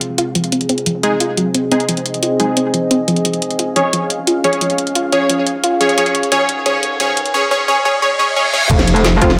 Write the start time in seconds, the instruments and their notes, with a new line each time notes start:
Already playing: ambient pad C4 G#4 F5
0.01 closed hi-hat
0.18 synth pluck F4, closed hi-hat
0.35 synth pluck F3, closed hi-hat
0.44 closed hi-hat
0.52 synth pluck C4, ambient pad C4 D#5, closed hi-hat
0.61 closed hi-hat
0.69 synth pluck C4, closed hi-hat
0.78 closed hi-hat
0.86 synth pluck F3, closed hi-hat
1.03 synth stab G#3 D#4 G#4, closed hi-hat
1.20 synth pluck F4, closed hi-hat
1.37 synth pluck F#3, closed hi-hat
1.54 synth pluck C4, closed hi-hat
1.72 synth stab G#3 D#4 G#4, synth pluck C4, closed hi-hat
1.80 closed hi-hat
1.89 synth pluck F3, closed hi-hat
1.97 closed hi-hat
2.06 closed hi-hat
2.14 closed hi-hat
2.23 synth pluck F4, closed hi-hat
2.40 synth pluck F#3, synth stab G#3 D#4 G#4, closed hi-hat
2.57 synth pluck C4, closed hi-hat
2.74 synth pluck F3, closed hi-hat
2.91 synth pluck C4, closed hi-hat
3.08 synth pluck F3, closed hi-hat
3.16 closed hi-hat
3.25 synth pluck F3, ambient pad C#4 F5, closed hi-hat, riser
3.33 closed hi-hat
3.42 closed hi-hat
3.51 closed hi-hat
3.59 synth pluck F4, closed hi-hat
3.76 synth pluck F3, synth stab C#4 G#4 C#5, closed hi-hat
3.93 synth pluck F3, closed hi-hat
4.10 closed hi-hat
4.27 synth pluck F4, closed hi-hat
4.44 synth pluck F3, synth stab C#4 G#4 C#5, closed hi-hat
4.53 closed hi-hat
4.61 synth pluck F3, closed hi-hat
4.70 closed hi-hat
4.78 closed hi-hat
4.87 closed hi-hat
4.95 synth pluck F4, closed hi-hat
5.12 synth pluck F3, synth stab C#4 G#4 C#5, closed hi-hat
5.30 synth pluck F3, closed hi-hat
5.47 closed hi-hat
5.64 synth pluck F4, closed hi-hat
5.81 synth pluck F3, synth stab C#4 G#4 C#5, closed hi-hat
5.89 closed hi-hat
5.98 synth pluck F3, synth stab C#4 G#4 C#5, closed hi-hat
6.06 closed hi-hat
6.15 closed hi-hat
6.23 closed hi-hat
6.32 synth pluck F3, synth stab C#4 G#4 C#5, closed hi-hat
6.49 closed hi-hat
6.66 synth pluck F3, synth stab C#4 G#4 C#5, closed hi-hat
6.83 closed hi-hat
7.00 synth pluck F3, synth stab C#4 G#4 C#5, closed hi-hat
7.17 closed hi-hat
7.26 closed hi-hat
7.34 synth stab C#4 G#4 C#5
7.51 synth stab C#4 G#4 C#5
7.68 synth stab C#4 G#4 C#5
7.85 synth stab C#4 G#4 C#5
8.02 synth stab C#4 G#4 C#5, reverse cymbal
8.19 synth stab C#4 G#4 C#5
8.36 synth stab C#4 G#4 C#5
8.53 synth stab C#4 G#4 C#5, high tom
8.62 mid tom
8.70 wobble bass F1, ambient pad F4, kick, closed hi-hat, crash, ride, impact
8.79 snare, closed hi-hat
8.87 closed hi-hat, ride
8.96 closed hi-hat
9.04 snare, closed hi-hat, ride
9.21 wobble bass F1, synth stab F3 C4 F4, kick, snare, closed hi-hat, ride
9.30 snare